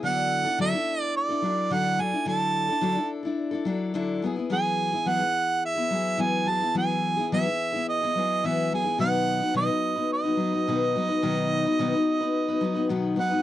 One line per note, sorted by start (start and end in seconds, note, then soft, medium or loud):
0.03 0.45 D3 medium
0.03 0.46 F#3 medium
0.03 0.46 D4 medium
0.03 0.45 E4 medium
0.03 0.43 A4 medium
0.03 0.57 F#5 medium
0.45 0.58 D4 soft
0.45 0.59 E4 soft
0.45 0.59 A4 soft
0.58 0.73 D3 medium
0.58 0.74 F#3 medium
0.58 0.74 D4 medium
0.58 0.73 E4 medium
0.58 0.71 A4 medium
0.58 1.01 E5 medium
0.72 1.31 D4 soft
0.72 1.30 E4 soft
0.72 1.28 A4 soft
1.01 1.13 D5 medium
1.16 1.74 D5 medium
1.29 1.43 D4 soft
1.29 1.44 E4 soft
1.29 1.43 A4 medium
1.42 1.70 F#3 soft
1.42 1.70 D4 medium
1.42 1.71 E4 medium
1.42 1.72 A4 medium
1.70 1.99 D3 medium
1.70 1.96 F#3 medium
1.70 1.98 D4 medium
1.70 1.99 E4 medium
1.70 2.00 A4 medium
1.70 2.02 F#5 medium
1.98 2.13 F#3 soft
1.98 2.13 D4 medium
1.98 2.13 E4 medium
1.98 2.11 A4 medium
1.98 2.28 G#5 medium
2.12 2.25 D4 soft
2.12 2.26 E4 soft
2.12 2.27 A4 soft
2.25 2.68 D3 medium
2.25 2.69 F#3 medium
2.25 2.69 D4 medium
2.25 2.69 E4 medium
2.25 2.67 A4 medium
2.25 3.08 A5 medium
2.69 2.81 D4 soft
2.69 2.82 E4 soft
2.69 2.82 A4 soft
2.81 2.96 D3 medium
2.81 2.97 F#3 medium
2.81 2.97 D4 medium
2.81 2.95 E4 medium
2.81 2.94 A4 medium
2.95 3.25 D4 soft
2.95 3.24 E4 soft
2.95 3.22 A4 soft
3.23 3.53 D4 soft
3.23 3.52 E4 soft
3.23 3.50 A4 soft
3.51 3.65 D4 soft
3.51 3.66 E4 soft
3.51 3.66 A4 soft
3.65 3.94 F#3 medium
3.65 3.94 D4 medium
3.65 3.94 E4 medium
3.65 3.95 A4 medium
3.94 4.23 D3 medium
3.94 4.21 F#3 medium
3.94 4.23 D4 medium
3.94 4.23 E4 medium
3.94 4.24 A4 medium
4.22 4.37 F#3 medium
4.22 4.38 B3 medium
4.22 4.36 E4 medium
4.22 4.35 G#4 medium
4.36 4.50 B3 soft
4.36 4.50 E4 soft
4.36 4.51 G#4 soft
4.50 4.93 E3 medium
4.50 4.93 F#3 medium
4.50 4.93 B3 medium
4.50 4.93 E4 medium
4.50 4.91 G#4 medium
4.50 5.10 G#5 medium
4.92 5.06 B3 soft
4.92 5.06 E4 soft
4.92 5.07 G#4 soft
5.05 5.20 E3 medium
5.05 5.21 F#3 medium
5.05 5.21 B3 medium
5.05 5.20 E4 medium
5.05 5.18 G#4 medium
5.05 5.64 F#5 medium
5.19 5.78 B3 soft
5.19 5.76 E4 soft
5.19 5.74 G#4 soft
5.66 6.23 E5 medium
5.75 5.90 B3 soft
5.75 5.91 E4 soft
5.75 5.90 G#4 soft
5.90 6.17 F#3 soft
5.90 6.18 B3 medium
5.90 6.18 E4 medium
5.90 6.18 G#4 medium
6.18 6.46 E3 medium
6.18 6.45 F#3 medium
6.18 6.46 B3 medium
6.18 6.47 E4 medium
6.18 6.47 G#4 medium
6.18 6.50 G#5 medium
6.46 6.61 F#3 medium
6.46 6.61 B3 medium
6.46 6.61 E4 medium
6.46 6.59 G#4 medium
6.46 6.76 A5 medium
6.60 6.74 B3 soft
6.60 6.75 E4 soft
6.60 6.75 G#4 soft
6.75 7.17 E3 medium
6.75 7.17 F#3 medium
6.75 7.17 B3 medium
6.75 7.18 E4 medium
6.75 7.16 G#4 medium
6.75 7.29 G#5 medium
7.17 7.32 B3 soft
7.17 7.32 E4 soft
7.17 7.31 G#4 medium
7.32 7.46 E3 medium
7.32 7.46 F#3 medium
7.32 7.46 B3 medium
7.32 7.46 E4 medium
7.32 7.44 G#4 medium
7.32 7.85 E5 medium
7.45 7.75 B3 soft
7.45 7.73 E4 soft
7.45 7.71 G#4 soft
7.72 8.03 B3 soft
7.72 8.02 E4 soft
7.72 8.00 G#4 soft
7.89 8.47 D#5 medium
8.01 8.16 B3 soft
8.01 8.16 E4 soft
8.01 8.15 G#4 soft
8.15 8.43 F#3 medium
8.15 8.44 B3 medium
8.15 8.44 E4 medium
8.15 8.45 G#4 medium
8.44 8.72 E3 medium
8.44 8.71 F#3 medium
8.44 8.72 B3 medium
8.44 8.72 E4 medium
8.44 8.73 G#4 medium
8.44 8.72 E5 medium
8.72 8.85 F#3 medium
8.72 8.86 B3 medium
8.72 8.85 E4 medium
8.72 8.83 G#4 medium
8.72 8.99 G#5 medium
8.84 8.99 B3 soft
8.84 9.00 E4 soft
8.84 8.99 G#4 soft
8.98 9.41 B2 medium
8.98 9.41 D#3 medium
8.98 9.41 F#3 medium
8.98 9.41 B3 medium
8.98 9.41 D#4 medium
8.98 9.39 B4 medium
8.98 9.52 F#5 medium
9.40 9.53 F#3 soft
9.40 9.54 B3 soft
9.40 9.55 D#4 soft
9.40 9.55 B4 soft
9.54 9.68 B2 medium
9.54 9.69 D#3 medium
9.54 9.69 F#3 medium
9.54 9.68 B3 medium
9.54 9.68 D#4 medium
9.54 9.66 B4 medium
9.54 10.08 D#5 medium
9.68 9.97 F#3 soft
9.68 9.96 B3 soft
9.68 9.96 D#4 soft
9.68 9.94 B4 soft
9.96 10.26 F#3 soft
9.96 10.25 B3 soft
9.96 10.24 D#4 soft
9.96 10.23 B4 soft
10.13 12.88 D#5 medium
10.24 10.36 F#3 soft
10.24 10.38 B3 soft
10.24 10.38 D#4 soft
10.24 10.38 B4 soft
10.37 10.52 F#3 medium
10.37 10.53 B3 medium
10.37 10.52 D#4 medium
10.37 10.51 B4 medium
10.52 10.67 F#3 soft
10.52 10.67 B3 soft
10.52 10.67 D#4 soft
10.52 10.66 B4 soft
10.67 10.95 B2 medium
10.67 10.96 D#3 medium
10.67 10.94 F#3 medium
10.67 10.95 B3 medium
10.67 10.96 D#4 medium
10.67 10.96 B4 medium
10.95 11.09 F#3 medium
10.95 11.09 B3 medium
10.95 11.08 D#4 medium
10.95 11.07 B4 medium
11.08 11.22 F#3 soft
11.08 11.22 B3 soft
11.08 11.23 D#4 soft
11.08 11.23 B4 medium
11.22 11.65 B2 medium
11.22 11.65 D#3 medium
11.22 11.65 F#3 medium
11.22 11.65 B3 medium
11.22 11.66 D#4 medium
11.22 11.64 B4 medium
11.65 11.79 F#3 soft
11.65 11.79 B3 medium
11.65 11.79 D#4 medium
11.65 11.79 B4 soft
11.79 11.93 B2 medium
11.79 11.93 D#3 medium
11.79 11.94 F#3 medium
11.79 11.94 B3 medium
11.79 11.93 D#4 medium
11.79 11.92 B4 medium
11.93 12.23 F#3 soft
11.93 12.22 B3 soft
11.93 12.21 D#4 medium
11.93 12.19 B4 medium
12.21 12.50 F#3 soft
12.21 12.49 B3 soft
12.21 12.48 D#4 soft
12.21 12.47 B4 soft
12.48 12.60 F#3 soft
12.48 12.61 B3 soft
12.48 12.62 D#4 soft
12.48 12.63 B4 medium
12.61 12.76 F#3 medium
12.61 12.75 B3 medium
12.61 12.75 D#4 medium
12.61 12.73 B4 medium
12.75 12.89 F#3 soft
12.75 12.89 B3 soft
12.75 12.90 D#4 medium
12.75 12.90 B4 soft
12.89 13.18 B2 medium
12.89 13.18 D#3 medium
12.89 13.15 F#3 medium
12.89 13.16 B3 medium
12.89 13.17 D#4 medium
12.89 13.18 B4 medium
13.16 13.31 F#3 medium
13.16 13.32 B3 medium
13.16 13.31 D#4 medium
13.16 13.29 B4 medium
13.16 13.42 F#5 medium
13.31 13.42 F#3 soft
13.31 13.42 B3 soft
13.31 13.42 D#4 soft
13.31 13.42 B4 soft